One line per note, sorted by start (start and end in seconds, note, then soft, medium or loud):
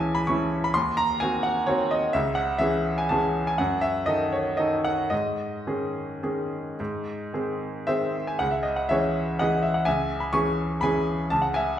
0.00 0.76 C#2 medium
0.00 0.23 E3 soft
0.00 0.23 C#4 soft
0.00 0.23 E4 medium
0.00 0.76 G#5 medium
0.00 0.76 A5 medium
0.15 0.27 B5 medium
0.27 0.71 E3 soft
0.27 0.71 C#4 soft
0.27 0.71 E4 soft
0.27 0.63 C#6 medium
0.64 0.75 B5 medium
0.74 1.19 D#2 medium
0.74 0.97 C6 medium
0.97 1.20 A#5 loud
1.20 1.65 D#3 soft
1.20 1.65 C4 soft
1.20 1.65 F#4 soft
1.20 1.44 G#5 medium
1.43 1.68 F#5 medium
1.66 2.11 D#3 soft
1.66 2.11 C4 soft
1.66 2.11 F#4 soft
1.66 1.91 C#5 medium
1.91 2.14 D#5 medium
2.13 2.60 C#2 medium
2.13 2.37 E5 medium
2.35 2.60 F#5 medium
2.58 3.07 E3 soft
2.58 3.07 C#4 soft
2.58 3.07 G#4 soft
2.58 2.97 E5 medium
2.98 3.11 G#5 medium
3.09 3.55 E3 soft
3.09 3.55 C#4 soft
3.09 3.55 G#4 soft
3.09 3.46 A5 medium
3.47 3.59 G#5 medium
3.58 4.05 F#2 medium
3.58 3.82 F#5 medium
3.81 4.06 E5 medium
4.06 4.54 D#3 soft
4.06 4.55 D#4 soft
4.06 4.55 A4 soft
4.06 4.32 D#5 medium
4.32 4.58 C#5 medium
4.57 5.07 D#3 soft
4.57 5.07 D#4 soft
4.57 5.07 A4 soft
4.57 4.84 D#5 medium
4.84 5.11 F#5 medium
5.10 5.64 G#2 soft
5.10 8.14 D#5 medium
5.67 6.20 D#3 soft
5.67 6.20 C#4 soft
5.67 6.20 G#4 soft
6.23 6.75 D#3 soft
6.23 6.75 C#4 soft
6.23 6.75 G#4 soft
6.80 7.32 G#2 medium
7.33 7.84 D#3 soft
7.33 7.84 C4 soft
7.33 7.84 G#4 soft
7.87 8.36 D#3 soft
7.87 8.37 C4 soft
7.87 8.37 G#4 soft
7.87 8.25 C5 medium
7.87 8.28 E5 medium
8.27 8.40 G#5 medium
8.39 8.88 C#2 medium
8.39 8.52 F#5 medium
8.51 8.64 E5 medium
8.63 8.76 D#5 medium
8.76 8.89 F#5 medium
8.89 9.35 E3 soft
8.89 9.36 C#4 soft
8.89 9.35 G#4 soft
8.89 9.36 C#5 medium
8.89 9.39 E5 medium
9.39 9.83 E3 soft
9.39 9.83 C#4 soft
9.39 9.83 G#4 soft
9.39 9.62 D#5 medium
9.39 9.63 F#5 medium
9.63 9.74 E5 medium
9.74 9.86 F#5 medium
9.85 10.32 C#2 medium
9.85 10.19 E5 medium
9.85 10.21 G#5 medium
10.20 10.33 B5 medium
10.33 10.79 E3 soft
10.33 10.79 C#4 soft
10.33 10.79 G#4 soft
10.33 10.79 G#5 medium
10.33 10.82 C#6 medium
10.81 11.27 E3 soft
10.81 11.27 C#4 soft
10.81 11.27 G#4 soft
10.81 11.28 G#5 medium
10.81 11.30 B5 medium
11.30 11.77 C#2 medium
11.30 11.42 A5 medium
11.42 11.54 F#5 medium
11.54 11.77 E5 medium
11.54 11.78 G#5 medium